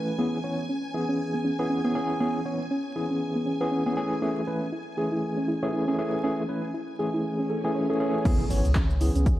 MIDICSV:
0, 0, Header, 1, 8, 480
1, 0, Start_track
1, 0, Key_signature, 4, "minor"
1, 0, Tempo, 504202
1, 176, Time_signature, 4, 2, 24, 8
1, 8944, End_track
2, 0, Start_track
2, 0, Title_t, "String machine"
2, 0, Program_c, 0, 50
2, 0, Note_on_c, 0, 80, 76
2, 7868, Note_off_c, 0, 80, 0
2, 8944, End_track
3, 0, Start_track
3, 0, Title_t, "Synth arpeggio sound"
3, 0, Program_c, 1, 84
3, 176, Note_on_c, 1, 59, 93
3, 208, Note_off_c, 1, 59, 0
3, 657, Note_on_c, 1, 61, 75
3, 688, Note_off_c, 1, 61, 0
3, 897, Note_on_c, 1, 64, 71
3, 975, Note_off_c, 1, 64, 0
3, 1036, Note_on_c, 1, 61, 71
3, 1074, Note_off_c, 1, 61, 0
3, 1275, Note_on_c, 1, 59, 74
3, 1313, Note_off_c, 1, 59, 0
3, 1375, Note_on_c, 1, 61, 74
3, 1428, Note_off_c, 1, 61, 0
3, 1515, Note_on_c, 1, 71, 99
3, 1538, Note_off_c, 1, 71, 0
3, 1617, Note_on_c, 1, 61, 70
3, 1648, Note_off_c, 1, 61, 0
3, 1756, Note_on_c, 1, 59, 72
3, 1778, Note_off_c, 1, 59, 0
3, 2096, Note_on_c, 1, 59, 97
3, 2128, Note_off_c, 1, 59, 0
3, 2576, Note_on_c, 1, 61, 80
3, 2608, Note_off_c, 1, 61, 0
3, 2816, Note_on_c, 1, 64, 74
3, 2895, Note_off_c, 1, 64, 0
3, 2955, Note_on_c, 1, 61, 73
3, 2993, Note_off_c, 1, 61, 0
3, 3195, Note_on_c, 1, 59, 71
3, 3233, Note_off_c, 1, 59, 0
3, 3296, Note_on_c, 1, 61, 73
3, 3349, Note_off_c, 1, 61, 0
3, 3434, Note_on_c, 1, 71, 94
3, 3458, Note_off_c, 1, 71, 0
3, 3536, Note_on_c, 1, 61, 72
3, 3568, Note_off_c, 1, 61, 0
3, 3674, Note_on_c, 1, 59, 69
3, 3698, Note_off_c, 1, 59, 0
3, 4016, Note_on_c, 1, 61, 96
3, 4047, Note_off_c, 1, 61, 0
3, 4496, Note_on_c, 1, 64, 82
3, 4528, Note_off_c, 1, 64, 0
3, 4735, Note_on_c, 1, 68, 71
3, 4814, Note_off_c, 1, 68, 0
3, 4875, Note_on_c, 1, 64, 68
3, 4913, Note_off_c, 1, 64, 0
3, 5115, Note_on_c, 1, 61, 70
3, 5153, Note_off_c, 1, 61, 0
3, 5216, Note_on_c, 1, 64, 74
3, 5269, Note_off_c, 1, 64, 0
3, 5355, Note_on_c, 1, 73, 92
3, 5378, Note_off_c, 1, 73, 0
3, 5456, Note_on_c, 1, 64, 75
3, 5488, Note_off_c, 1, 64, 0
3, 5595, Note_on_c, 1, 61, 76
3, 5618, Note_off_c, 1, 61, 0
3, 5936, Note_on_c, 1, 61, 96
3, 5968, Note_off_c, 1, 61, 0
3, 6417, Note_on_c, 1, 64, 81
3, 6448, Note_off_c, 1, 64, 0
3, 6657, Note_on_c, 1, 68, 73
3, 6735, Note_off_c, 1, 68, 0
3, 6795, Note_on_c, 1, 64, 71
3, 6834, Note_off_c, 1, 64, 0
3, 7036, Note_on_c, 1, 61, 70
3, 7074, Note_off_c, 1, 61, 0
3, 7137, Note_on_c, 1, 69, 76
3, 7215, Note_off_c, 1, 69, 0
3, 7276, Note_on_c, 1, 80, 72
3, 7314, Note_off_c, 1, 80, 0
3, 7377, Note_on_c, 1, 73, 73
3, 7455, Note_off_c, 1, 73, 0
3, 7515, Note_on_c, 1, 69, 75
3, 7553, Note_off_c, 1, 69, 0
3, 7756, Note_on_c, 1, 73, 96
3, 7794, Note_off_c, 1, 73, 0
3, 7857, Note_on_c, 1, 59, 101
3, 7888, Note_off_c, 1, 59, 0
3, 8336, Note_on_c, 1, 61, 83
3, 8368, Note_off_c, 1, 61, 0
3, 8576, Note_on_c, 1, 64, 77
3, 8655, Note_off_c, 1, 64, 0
3, 8716, Note_on_c, 1, 61, 78
3, 8754, Note_off_c, 1, 61, 0
3, 8944, End_track
4, 0, Start_track
4, 0, Title_t, "Tine electric piano"
4, 0, Program_c, 2, 4
4, 0, Note_on_c, 2, 52, 85
4, 0, Note_on_c, 2, 57, 76
4, 0, Note_on_c, 2, 61, 75
4, 0, Note_on_c, 2, 71, 91
4, 151, Note_off_c, 2, 52, 0
4, 152, Note_off_c, 2, 57, 0
4, 152, Note_off_c, 2, 61, 0
4, 153, Note_off_c, 2, 71, 0
4, 175, Note_on_c, 2, 52, 71
4, 176, Note_on_c, 2, 59, 68
4, 177, Note_on_c, 2, 61, 66
4, 177, Note_on_c, 2, 68, 79
4, 354, Note_off_c, 2, 52, 0
4, 354, Note_off_c, 2, 59, 0
4, 355, Note_off_c, 2, 61, 0
4, 355, Note_off_c, 2, 68, 0
4, 416, Note_on_c, 2, 52, 64
4, 416, Note_on_c, 2, 59, 59
4, 417, Note_on_c, 2, 61, 58
4, 417, Note_on_c, 2, 73, 70
4, 594, Note_off_c, 2, 52, 0
4, 595, Note_off_c, 2, 59, 0
4, 595, Note_off_c, 2, 61, 0
4, 595, Note_off_c, 2, 73, 0
4, 895, Note_on_c, 2, 52, 63
4, 896, Note_on_c, 2, 59, 63
4, 897, Note_on_c, 2, 61, 59
4, 898, Note_on_c, 2, 68, 71
4, 1481, Note_off_c, 2, 52, 0
4, 1482, Note_off_c, 2, 59, 0
4, 1482, Note_off_c, 2, 61, 0
4, 1483, Note_off_c, 2, 68, 0
4, 1514, Note_on_c, 2, 52, 81
4, 1515, Note_on_c, 2, 59, 75
4, 1516, Note_on_c, 2, 61, 72
4, 1516, Note_on_c, 2, 68, 86
4, 1722, Note_off_c, 2, 52, 0
4, 1722, Note_off_c, 2, 59, 0
4, 1722, Note_off_c, 2, 61, 0
4, 1723, Note_off_c, 2, 68, 0
4, 1755, Note_on_c, 2, 52, 78
4, 1755, Note_on_c, 2, 59, 70
4, 1756, Note_on_c, 2, 61, 71
4, 1756, Note_on_c, 2, 68, 88
4, 1832, Note_off_c, 2, 52, 0
4, 1832, Note_off_c, 2, 59, 0
4, 1832, Note_off_c, 2, 61, 0
4, 1833, Note_off_c, 2, 68, 0
4, 1856, Note_on_c, 2, 52, 80
4, 1857, Note_on_c, 2, 59, 68
4, 1857, Note_on_c, 2, 61, 69
4, 1858, Note_on_c, 2, 68, 82
4, 2072, Note_off_c, 2, 52, 0
4, 2072, Note_off_c, 2, 59, 0
4, 2072, Note_off_c, 2, 61, 0
4, 2073, Note_off_c, 2, 68, 0
4, 2096, Note_on_c, 2, 52, 73
4, 2096, Note_on_c, 2, 59, 65
4, 2096, Note_on_c, 2, 61, 66
4, 2097, Note_on_c, 2, 68, 82
4, 2274, Note_off_c, 2, 52, 0
4, 2274, Note_off_c, 2, 59, 0
4, 2275, Note_off_c, 2, 61, 0
4, 2275, Note_off_c, 2, 68, 0
4, 2336, Note_on_c, 2, 52, 62
4, 2336, Note_on_c, 2, 59, 60
4, 2337, Note_on_c, 2, 61, 58
4, 2337, Note_on_c, 2, 73, 72
4, 2514, Note_off_c, 2, 52, 0
4, 2515, Note_off_c, 2, 59, 0
4, 2515, Note_off_c, 2, 61, 0
4, 2515, Note_off_c, 2, 73, 0
4, 2815, Note_on_c, 2, 52, 67
4, 2816, Note_on_c, 2, 59, 61
4, 2817, Note_on_c, 2, 61, 63
4, 2819, Note_on_c, 2, 68, 75
4, 3401, Note_off_c, 2, 52, 0
4, 3402, Note_off_c, 2, 59, 0
4, 3402, Note_off_c, 2, 61, 0
4, 3403, Note_off_c, 2, 68, 0
4, 3434, Note_on_c, 2, 52, 81
4, 3435, Note_on_c, 2, 59, 76
4, 3435, Note_on_c, 2, 61, 73
4, 3436, Note_on_c, 2, 68, 85
4, 3641, Note_off_c, 2, 52, 0
4, 3642, Note_off_c, 2, 59, 0
4, 3642, Note_off_c, 2, 61, 0
4, 3642, Note_off_c, 2, 68, 0
4, 3674, Note_on_c, 2, 52, 78
4, 3675, Note_on_c, 2, 59, 68
4, 3675, Note_on_c, 2, 61, 73
4, 3676, Note_on_c, 2, 68, 84
4, 3752, Note_off_c, 2, 52, 0
4, 3752, Note_off_c, 2, 59, 0
4, 3752, Note_off_c, 2, 61, 0
4, 3752, Note_off_c, 2, 68, 0
4, 3776, Note_on_c, 2, 52, 75
4, 3777, Note_on_c, 2, 57, 72
4, 3777, Note_on_c, 2, 61, 68
4, 3777, Note_on_c, 2, 68, 88
4, 3992, Note_off_c, 2, 52, 0
4, 3992, Note_off_c, 2, 57, 0
4, 3992, Note_off_c, 2, 61, 0
4, 3993, Note_off_c, 2, 68, 0
4, 4015, Note_on_c, 2, 52, 73
4, 4016, Note_on_c, 2, 57, 67
4, 4016, Note_on_c, 2, 61, 66
4, 4017, Note_on_c, 2, 68, 80
4, 4194, Note_off_c, 2, 52, 0
4, 4194, Note_off_c, 2, 57, 0
4, 4195, Note_off_c, 2, 61, 0
4, 4195, Note_off_c, 2, 68, 0
4, 4256, Note_on_c, 2, 52, 65
4, 4256, Note_on_c, 2, 57, 60
4, 4257, Note_on_c, 2, 61, 59
4, 4257, Note_on_c, 2, 71, 71
4, 4434, Note_off_c, 2, 52, 0
4, 4435, Note_off_c, 2, 57, 0
4, 4435, Note_off_c, 2, 61, 0
4, 4435, Note_off_c, 2, 71, 0
4, 4734, Note_on_c, 2, 52, 68
4, 4735, Note_on_c, 2, 57, 64
4, 4737, Note_on_c, 2, 61, 62
4, 4738, Note_on_c, 2, 68, 77
4, 5321, Note_off_c, 2, 52, 0
4, 5321, Note_off_c, 2, 57, 0
4, 5322, Note_off_c, 2, 61, 0
4, 5323, Note_off_c, 2, 68, 0
4, 5354, Note_on_c, 2, 52, 77
4, 5354, Note_on_c, 2, 57, 77
4, 5355, Note_on_c, 2, 61, 78
4, 5356, Note_on_c, 2, 68, 86
4, 5561, Note_off_c, 2, 52, 0
4, 5562, Note_off_c, 2, 57, 0
4, 5562, Note_off_c, 2, 61, 0
4, 5562, Note_off_c, 2, 68, 0
4, 5594, Note_on_c, 2, 52, 78
4, 5595, Note_on_c, 2, 57, 73
4, 5595, Note_on_c, 2, 61, 72
4, 5596, Note_on_c, 2, 68, 85
4, 5672, Note_off_c, 2, 52, 0
4, 5672, Note_off_c, 2, 57, 0
4, 5672, Note_off_c, 2, 61, 0
4, 5672, Note_off_c, 2, 68, 0
4, 5696, Note_on_c, 2, 52, 79
4, 5696, Note_on_c, 2, 57, 74
4, 5696, Note_on_c, 2, 61, 72
4, 5697, Note_on_c, 2, 68, 86
4, 5912, Note_off_c, 2, 52, 0
4, 5912, Note_off_c, 2, 57, 0
4, 5912, Note_off_c, 2, 61, 0
4, 5912, Note_off_c, 2, 68, 0
4, 5935, Note_on_c, 2, 52, 75
4, 5936, Note_on_c, 2, 57, 70
4, 5936, Note_on_c, 2, 61, 68
4, 5937, Note_on_c, 2, 68, 84
4, 6114, Note_off_c, 2, 52, 0
4, 6115, Note_off_c, 2, 57, 0
4, 6115, Note_off_c, 2, 61, 0
4, 6115, Note_off_c, 2, 68, 0
4, 6175, Note_on_c, 2, 52, 65
4, 6176, Note_on_c, 2, 57, 61
4, 6177, Note_on_c, 2, 61, 61
4, 6178, Note_on_c, 2, 71, 74
4, 6354, Note_off_c, 2, 52, 0
4, 6355, Note_off_c, 2, 57, 0
4, 6355, Note_off_c, 2, 61, 0
4, 6355, Note_off_c, 2, 71, 0
4, 6655, Note_on_c, 2, 52, 67
4, 6656, Note_on_c, 2, 57, 61
4, 6657, Note_on_c, 2, 61, 66
4, 6658, Note_on_c, 2, 68, 76
4, 7241, Note_off_c, 2, 52, 0
4, 7242, Note_off_c, 2, 57, 0
4, 7242, Note_off_c, 2, 61, 0
4, 7243, Note_off_c, 2, 68, 0
4, 7274, Note_on_c, 2, 52, 78
4, 7275, Note_on_c, 2, 57, 75
4, 7276, Note_on_c, 2, 61, 73
4, 7276, Note_on_c, 2, 68, 88
4, 7481, Note_off_c, 2, 52, 0
4, 7482, Note_off_c, 2, 57, 0
4, 7482, Note_off_c, 2, 61, 0
4, 7482, Note_off_c, 2, 68, 0
4, 7515, Note_on_c, 2, 52, 84
4, 7516, Note_on_c, 2, 57, 73
4, 7516, Note_on_c, 2, 61, 70
4, 7517, Note_on_c, 2, 68, 87
4, 7592, Note_off_c, 2, 52, 0
4, 7592, Note_off_c, 2, 57, 0
4, 7593, Note_off_c, 2, 61, 0
4, 7593, Note_off_c, 2, 68, 0
4, 7616, Note_on_c, 2, 52, 81
4, 7616, Note_on_c, 2, 57, 73
4, 7617, Note_on_c, 2, 61, 70
4, 7618, Note_on_c, 2, 68, 89
4, 7832, Note_off_c, 2, 52, 0
4, 7832, Note_off_c, 2, 57, 0
4, 7832, Note_off_c, 2, 61, 0
4, 7833, Note_off_c, 2, 68, 0
4, 7856, Note_on_c, 2, 59, 71
4, 7857, Note_on_c, 2, 61, 71
4, 7857, Note_on_c, 2, 68, 90
4, 8034, Note_off_c, 2, 59, 0
4, 8035, Note_off_c, 2, 61, 0
4, 8035, Note_off_c, 2, 68, 0
4, 8095, Note_on_c, 2, 52, 74
4, 8095, Note_on_c, 2, 59, 65
4, 8096, Note_on_c, 2, 61, 66
4, 8097, Note_on_c, 2, 73, 78
4, 8274, Note_off_c, 2, 52, 0
4, 8274, Note_off_c, 2, 59, 0
4, 8274, Note_off_c, 2, 61, 0
4, 8275, Note_off_c, 2, 73, 0
4, 8574, Note_on_c, 2, 52, 72
4, 8575, Note_on_c, 2, 59, 70
4, 8576, Note_on_c, 2, 61, 69
4, 8577, Note_on_c, 2, 68, 80
4, 8944, Note_off_c, 2, 52, 0
4, 8944, Note_off_c, 2, 59, 0
4, 8944, Note_off_c, 2, 61, 0
4, 8944, Note_off_c, 2, 68, 0
4, 8944, End_track
5, 0, Start_track
5, 0, Title_t, "Sub bass"
5, 0, Program_c, 3, 38
5, 7857, Note_on_c, 3, 37, 95
5, 7961, Note_off_c, 3, 37, 0
5, 8097, Note_on_c, 3, 32, 78
5, 8201, Note_off_c, 3, 32, 0
5, 8237, Note_on_c, 3, 37, 91
5, 8660, Note_off_c, 3, 37, 0
5, 8716, Note_on_c, 3, 37, 92
5, 8944, Note_off_c, 3, 37, 0
5, 8944, End_track
6, 0, Start_track
6, 0, Title_t, "Impact"
6, 0, Program_c, 4, 103
6, 7856, Note_on_c, 4, 60, 76
6, 8944, Note_off_c, 4, 60, 0
6, 8944, End_track
7, 0, Start_track
7, 0, Title_t, "Swell"
7, 0, Program_c, 5, 103
7, 6896, Note_on_c, 5, 60, 69
7, 7856, Note_off_c, 5, 60, 0
7, 8944, End_track
8, 0, Start_track
8, 0, Title_t, "Drums"
8, 7857, Note_on_c, 9, 36, 123
8, 7857, Note_on_c, 9, 42, 70
8, 7857, Note_on_c, 9, 49, 101
8, 7859, Note_on_c, 9, 82, 43
8, 7952, Note_off_c, 9, 36, 0
8, 7953, Note_off_c, 9, 42, 0
8, 7953, Note_off_c, 9, 49, 0
8, 7955, Note_off_c, 9, 82, 0
8, 7999, Note_on_c, 9, 82, 22
8, 8094, Note_off_c, 9, 82, 0
8, 8097, Note_on_c, 9, 46, 98
8, 8099, Note_on_c, 9, 82, 73
8, 8192, Note_off_c, 9, 46, 0
8, 8194, Note_off_c, 9, 82, 0
8, 8236, Note_on_c, 9, 42, 52
8, 8238, Note_on_c, 9, 82, 30
8, 8331, Note_off_c, 9, 42, 0
8, 8331, Note_on_c, 9, 39, 126
8, 8333, Note_off_c, 9, 82, 0
8, 8336, Note_on_c, 9, 36, 120
8, 8337, Note_on_c, 9, 42, 68
8, 8338, Note_on_c, 9, 82, 46
8, 8426, Note_off_c, 9, 39, 0
8, 8432, Note_off_c, 9, 36, 0
8, 8432, Note_off_c, 9, 42, 0
8, 8434, Note_off_c, 9, 82, 0
8, 8477, Note_on_c, 9, 82, 24
8, 8572, Note_off_c, 9, 82, 0
8, 8576, Note_on_c, 9, 46, 86
8, 8578, Note_on_c, 9, 82, 78
8, 8671, Note_off_c, 9, 46, 0
8, 8673, Note_off_c, 9, 82, 0
8, 8715, Note_on_c, 9, 42, 54
8, 8717, Note_on_c, 9, 82, 34
8, 8811, Note_off_c, 9, 42, 0
8, 8813, Note_off_c, 9, 82, 0
8, 8816, Note_on_c, 9, 36, 118
8, 8816, Note_on_c, 9, 42, 71
8, 8818, Note_on_c, 9, 82, 45
8, 8911, Note_off_c, 9, 36, 0
8, 8911, Note_off_c, 9, 42, 0
8, 8913, Note_off_c, 9, 82, 0
8, 8944, End_track
0, 0, End_of_file